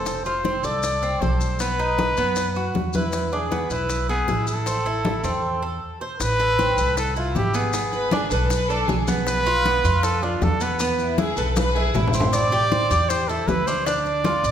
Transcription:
Already playing: upright bass F1, trumpet A4, cuban tres C5
0.06 high bongo, high conga, maracas
0.25 cuban tres F4, trumpet C5, high bongo, high conga, maracas
0.44 cuban tres C4, high bongo, high conga, maracas
0.63 upright bass C2, cuban tres A4, trumpet D5, high bongo, high conga, maracas
0.83 high bongo, high conga, maracas
1.02 cuban tres C4, high conga, maracas
1.21 upright bass B1, cuban tres A4, trumpet C5, high bongo, low bongo, high conga, maracas
1.41 high bongo, high conga, maracas
1.59 cuban tres B3, trumpet B4, high bongo, high conga, maracas
1.79 cuban tres D#4, high bongo, high conga, maracas
1.98 high bongo, high conga, maracas
2.17 upright bass F#2, cuban tres B3, high bongo, high conga, maracas
2.36 high bongo, high conga, maracas
2.55 cuban tres F#4, high conga, maracas
2.74 upright bass E2, high bongo, low bongo, high conga, maracas
2.93 trumpet E4, cuban tres B4, high bongo, high conga, maracas
3.12 high bongo, high conga, maracas
3.32 cuban tres D4, trumpet G#4, high bongo, high conga, maracas
3.51 cuban tres B3, high bongo, high conga, maracas
3.70 upright bass B1, cuban tres E4, trumpet B4, high bongo, high conga, maracas
3.90 high bongo, high conga, maracas
4.09 cuban tres B3, trumpet G#4, high conga, maracas
4.27 upright bass A1, cuban tres E4, high bongo, low bongo, high conga, maracas
4.47 trumpet A4, high bongo, high conga, maracas
4.66 cuban tres C4, high bongo, high conga, maracas
4.86 cuban tres E4, high bongo, high conga, maracas
5.05 high bongo, high conga, maracas
5.23 upright bass E2, cuban tres C4, high bongo, high conga, maracas
5.62 cuban tres A4
6.01 cuban tres C5
6.20 upright bass A1, trumpet B4, high bongo, high conga, maracas
6.40 cuban tres A4, high bongo, high conga, maracas
6.59 cuban tres C4, high bongo, high conga, maracas
6.77 upright bass C2, cuban tres A4, high bongo, high conga, maracas
6.97 trumpet A4, high bongo, high conga, maracas
7.16 cuban tres E4, trumpet F4, high conga, maracas
7.35 upright bass G#1, trumpet G4, high bongo, low bongo, high conga, maracas
7.54 cuban tres B3, trumpet G#4, high bongo, high conga, maracas
7.73 cuban tres B3, high bongo, high conga, maracas
7.93 violin section B4, high bongo, high conga, maracas
8.11 cuban tres D4, violin section G#4, high bongo, high conga, maracas
8.31 upright bass B1, violin section A4, cuban tres B4, high bongo, high conga, maracas
8.49 violin section B4, high bongo, high conga, maracas
8.69 cuban tres D4, violin section A4, high conga, maracas
8.88 upright bass B1, violin section G#4, high bongo, low bongo, high conga, maracas
9.08 cuban tres B3, high bongo, high conga, maracas
9.27 trumpet B4, high bongo, high conga, maracas
9.46 cuban tres F4, high bongo, high conga, maracas
9.65 cuban tres B3, high bongo, high conga, maracas
9.84 upright bass F2, cuban tres F4, high bongo, high conga, maracas
10.03 trumpet A4, high bongo, high conga, maracas
10.23 cuban tres D4, trumpet F4, high conga, maracas
10.41 upright bass E2, trumpet A4, high bongo, low bongo, high conga, maracas
10.61 cuban tres B3, trumpet B4, high bongo, high conga, maracas
10.79 cuban tres B3, high bongo, high conga, maracas
10.99 violin section E4, high bongo, high conga, maracas
11.18 cuban tres E4, violin section G#4, high bongo, high conga, maracas
11.37 upright bass B1, violin section A4, cuban tres B4, high bongo, high conga, maracas
11.56 violin section B4, high bongo, high conga, maracas
11.75 cuban tres E4, violin section G#4, maracas
11.94 upright bass A1, violin section E4, high bongo, low bongo, low conga, maracas
12.08 low conga
12.14 cuban tres C4, high bongo, maracas
12.20 low conga
12.33 trumpet D5, high bongo, high conga, maracas
12.52 cuban tres G4, high bongo, high conga, maracas
12.72 cuban tres C4, high bongo, high conga, maracas
12.90 upright bass E2, cuban tres G4, high bongo, high conga, maracas
13.09 trumpet C5, high bongo, high conga, maracas
13.28 cuban tres E4, trumpet A4, high conga, maracas
13.48 upright bass D2, trumpet B4, high bongo, low bongo, high conga, maracas
13.67 cuban tres D4, trumpet C5, high bongo, high conga, maracas
13.86 cuban tres D4, trumpet D5, high bongo, high conga, maracas
14.06 high bongo, high conga, maracas
14.24 cuban tres F4, high bongo, high conga, maracas
14.43 upright bass A1, cuban tres D5, high bongo, high conga, maracas

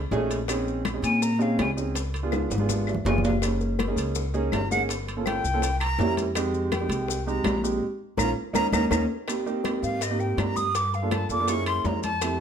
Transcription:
0.11 upright bass A#1, grand piano A3 C#4 D#4 G#4, high bongo, low bongo, high conga, low timbale, maracas
0.30 high bongo, high timbale, maracas
0.48 grand piano C4 C#4 D#4 G#4, high bongo, high conga, high timbale, claves, maracas
0.67 high bongo, high conga, maracas
0.85 high bongo, high conga, high timbale, low timbale, claves, maracas
0.93 grand piano C4 C#4 D#4 G#4
1.02 upright bass A#2, flute G#5, high conga, high timbale, maracas
1.22 flute A#5, high bongo, high conga, maracas
1.39 grand piano C4 C#4 D#4 G#4, flute F5, high conga, maracas
1.59 upright bass C#2, flute G#5, high bongo, low bongo, high conga, high timbale, low timbale, claves, maracas
1.77 grand piano C4 C#4 D#4 G#4, high bongo, maracas
1.95 high bongo, high conga, high timbale, maracas
2.14 high bongo, high conga, high timbale, maracas
2.23 grand piano B3 D4 F4 G#4
2.32 high bongo, high conga, high timbale, claves, maracas
2.50 upright bass G#1, high timbale, maracas
2.58 grand piano B3 D4 F4 G#4, high conga
2.69 high bongo, high conga, low timbale, maracas
2.87 high bongo, low timbale, claves, maracas
2.94 low conga
3.05 upright bass F#1, grand piano B3 D4 F4 G#4, flute G#5, high bongo, low bongo, low conga, low timbale, maracas
3.18 low conga
3.24 flute F5, high bongo, low timbale, maracas
3.30 low conga
3.42 grand piano A#3 C#4 D#4 G#4, high bongo, high conga, high timbale, claves, maracas
3.61 high bongo, high conga, maracas
3.79 high bongo, high conga, high timbale, low timbale, claves, maracas
3.88 grand piano A#3 C#4 D#4 G#4
3.96 upright bass C#2, high timbale, maracas
4.15 high bongo, high conga, maracas
4.34 grand piano A#3 C#4 D#4 G#4, high bongo, high conga, maracas
4.52 upright bass G1, flute A#5, high bongo, low bongo, high conga, high timbale, low timbale, claves, maracas
4.71 grand piano A#3 C#4 D#4 G#4, flute F#5, high bongo, high conga, maracas
4.89 high bongo, high timbale, maracas
5.07 high bongo, high conga, high timbale, maracas
5.17 grand piano A#3 C#4 F4 A4
5.25 flute G5, high bongo, high conga, high timbale, low timbale, claves, maracas
5.44 upright bass C2, high conga, maracas
5.54 grand piano A#3 C#4 F4 A4
5.62 high bongo, high conga, high timbale, maracas
5.79 flute A#5, high bongo, high conga, high timbale, claves, maracas
5.99 upright bass F2, grand piano A#3 C#4 E4 G4, high bongo, low bongo, high conga, low timbale, maracas
6.17 high bongo, high conga, high timbale, maracas
6.35 grand piano G#3 C4 D#4 G4, high bongo, high conga, high timbale, claves, maracas
6.54 high bongo, high conga, maracas
6.72 flute G5, high bongo, high conga, high timbale, low timbale, claves, maracas
6.81 grand piano G#3 C4 D#4 G4
6.89 upright bass C2, high conga, high timbale, maracas
7.08 high bongo, high conga, maracas
7.25 grand piano G#3 C4 D#4 G4, flute A#5, high bongo, high conga, maracas
7.44 upright bass A#1, high bongo, low bongo, high conga, high timbale, low timbale, claves, maracas
7.63 grand piano G#3 C4 D#4 G4, high bongo, maracas
8.17 upright bass A#1, grand piano A#3 C#4 F4, flute A#5, high bongo, high conga, high timbale, claves, maracas
8.53 upright bass D#2, grand piano A#3 C#4 D#4, flute A#5, high bongo, high conga, high timbale, claves, maracas
8.72 upright bass D#2, grand piano A#3 C#4 D#4, flute A#5, high bongo, high conga, high timbale, claves, maracas
8.91 upright bass D#2, grand piano A#3 C#4 D#4, flute A#5, high bongo, high conga, high timbale, claves, maracas
9.28 grand piano A#3 C4 D#4 G4, high bongo, high conga, high timbale, claves, maracas
9.46 grand piano A#3 C4 D#4 G4, high bongo, high conga, maracas
9.64 grand piano A#3 C4 D#4 G4, high bongo, high conga, high timbale, low timbale, claves, maracas
9.82 upright bass G#2, flute F5, high bongo, high conga, maracas
10.01 flute D#5, high bongo, high conga, high timbale, maracas
10.10 grand piano A#3 C4 D#4 G4
10.19 flute G5, high bongo, high conga, maracas
10.37 upright bass G2, flute A#5, high bongo, low bongo, high conga, high timbale, low timbale, claves, maracas
10.56 flute D#6, high conga, maracas
10.75 flute D6, high bongo, high conga, high timbale, maracas
10.93 flute F5, high bongo, high conga, maracas
11.02 grand piano A#3 D4 F4 A4
11.11 flute A5, high bongo, high conga, high timbale, low timbale, claves, maracas
11.29 upright bass F#2, grand piano A#3 D4 F4 A4, flute D6, high bongo, high conga, maracas
11.39 grand piano A#3 D4 F4 A4
11.48 grand piano A#3 C#4 E4 G#4, flute C#6, high bongo, high conga, high timbale, maracas
11.66 flute C6, high bongo, high conga, high timbale, claves, maracas
11.84 upright bass F2, flute A#5, high bongo, low bongo, high conga, low timbale, maracas
12.03 flute A5, high conga, high timbale, maracas
12.21 grand piano A3 C4 E4 G4, high bongo, high conga, high timbale, claves, maracas

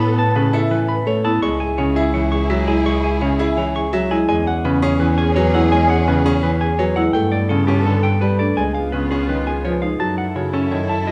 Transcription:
Already playing: double bass A2, string section B3 A4
0.00 grand piano B3, clean electric guitar B5
0.18 marimba B4, clean electric guitar A5
0.35 grand piano C#3, marimba C#4, clean electric guitar B4
0.53 grand piano E4, clean electric guitar A4, marimba E5
0.71 grand piano E3, clean electric guitar B4
0.89 marimba B4, clean electric guitar B5
1.07 grand piano A3, marimba C#5, clean electric guitar C#5
1.25 grand piano B3, marimba E4, clean electric guitar A5
1.42 double bass C#2, grand piano G#3, string section E4 G#4, clean electric guitar C#6
1.60 marimba G#4, clean electric guitar G#5
1.78 grand piano C#3, marimba C#4, clean electric guitar C#5
1.96 grand piano E4, clean electric guitar G#4, marimba E5
2.14 grand piano E3, clean electric guitar C#5
2.32 marimba G#4, clean electric guitar C#6
2.50 grand piano F#3, marimba C#5, clean electric guitar E5
2.68 grand piano G#3, marimba E4, clean electric guitar G#5
2.86 grand piano G#3, clean electric guitar C#6
3.03 marimba G#4, clean electric guitar G#5
3.21 grand piano C#3, marimba C#4, clean electric guitar C#5
3.39 grand piano E4, clean electric guitar G#4, marimba E5
3.57 grand piano E3, clean electric guitar C#5
3.75 marimba G#4, clean electric guitar C#6
3.93 grand piano F#3, marimba C#5, clean electric guitar E5
4.11 grand piano G#3, marimba E4, clean electric guitar G#5
4.28 double bass E2, grand piano G#3, string section C#4 G#4, clean electric guitar G#5
4.47 marimba G#4, clean electric guitar F#5
4.65 grand piano C#3, marimba C#4, clean electric guitar B4
4.82 grand piano C#4, clean electric guitar G#4, marimba C#5
5.00 grand piano E3, clean electric guitar B4
5.18 marimba G#4, clean electric guitar G#5
5.36 grand piano F#3, marimba B4, clean electric guitar C#5
5.54 grand piano G#3, marimba E4, clean electric guitar F#5
5.72 grand piano G#3, clean electric guitar G#5
5.89 marimba G#4, clean electric guitar F#5
6.07 grand piano C#3, marimba C#4, clean electric guitar B4
6.25 grand piano C#4, clean electric guitar G#4, marimba C#5
6.43 grand piano E3, clean electric guitar B4
6.61 marimba G#4, clean electric guitar G#5
6.79 grand piano F#3, marimba B4, clean electric guitar C#5
6.96 grand piano G#3, marimba E4, clean electric guitar F#5
7.13 double bass G2, grand piano A3, string section B3 A4, clean electric guitar G5
7.32 marimba A4, clean electric guitar D5
7.49 grand piano C#3, marimba C#4, clean electric guitar A4
7.67 grand piano C#4, clean electric guitar G4, marimba C#5
7.85 grand piano D3, clean electric guitar A4
8.03 marimba A4, clean electric guitar G5
8.21 grand piano G3, clean electric guitar B4, marimba B4
8.39 grand piano A3, marimba D4, clean electric guitar D5
8.57 double bass C#2, grand piano G#3, string section B3 F4, clean electric guitar G#5
8.74 marimba G#4, clean electric guitar F5
8.92 grand piano C#3, marimba C#4, clean electric guitar B4
9.11 grand piano C#4, clean electric guitar G#4, marimba C#5
9.29 grand piano D#3, clean electric guitar B4
9.47 marimba G#4, clean electric guitar G#5
9.65 grand piano F3, marimba B4, clean electric guitar C#5
9.82 grand piano G#3, marimba D#4, clean electric guitar F5
10.00 double bass F#2, grand piano F#3, marimba D#4, string section E4 A4, clean electric guitar A5
10.18 clean electric guitar F#5
10.35 grand piano C#3, marimba F#4, clean electric guitar C#5
10.53 grand piano C#4, marimba C#4, clean electric guitar A4
10.71 grand piano D#3, clean electric guitar C#5, marimba C#5
10.89 clean electric guitar A5
11.07 marimba F#4, clean electric guitar D#5

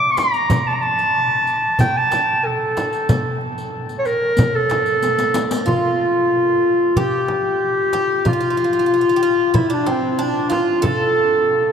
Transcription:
Already playing: clarinet D6
0.11 clarinet C#6
0.17 clarinet A#5, riq, darbuka tek, frame drum
0.34 riq, darbuka ka
0.50 riq, frame drum, darbuka dum
0.67 clarinet A5
0.73 clarinet A#5
0.81 clarinet A5, darbuka ka
0.99 riq, darbuka ka
1.30 darbuka ka
1.47 riq
1.79 clarinet G5, riq, darbuka dum, frame drum
1.97 clarinet A5
2.11 riq, darbuka tek, frame drum
2.28 darbuka ka
2.45 clarinet A4
2.77 riq, darbuka tek, frame drum
2.93 riq, darbuka ka
3.09 riq, darbuka dum, frame drum
3.41 darbuka ka
3.58 riq
3.89 riq, darbuka ka
3.99 clarinet C#5
4.05 clarinet A#4, riq
4.37 riq, frame drum, darbuka dum
4.55 clarinet A4
4.69 riq, darbuka tek, frame drum
4.86 riq, darbuka ka
5.02 riq, darbuka tek
5.18 riq, darbuka ka
5.34 riq, darbuka tek, frame drum
5.51 riq, darbuka ka
5.66 bouzouki F4, clarinet F4, frame drum, darbuka dum
6.00 darbuka ka
6.96 bouzouki G4, clarinet G4, darbuka dum, frame drum
7.28 darbuka tek, frame drum
7.93 bouzouki G4, darbuka tek, frame drum
8.25 bouzouki F4, clarinet F4, frame drum, darbuka dum
8.33 bouzouki F4
8.41 bouzouki F4
8.50 bouzouki F4
8.57 bouzouki F4, darbuka ka
8.64 bouzouki F4
8.73 bouzouki F4
8.79 bouzouki F4
8.86 bouzouki F4
8.94 bouzouki F4
9.01 bouzouki F4
9.09 bouzouki F4
9.16 bouzouki G4
9.23 bouzouki F4
9.54 bouzouki E4, clarinet E4, frame drum, darbuka dum
9.70 bouzouki D4, clarinet D4
9.87 bouzouki C4, darbuka tek, frame drum
9.91 clarinet C4
10.19 bouzouki D4, clarinet D4
10.50 bouzouki F4, clarinet F4, darbuka tek, frame drum
10.82 bouzouki A4, clarinet A4, darbuka dum, frame drum
11.16 darbuka ka

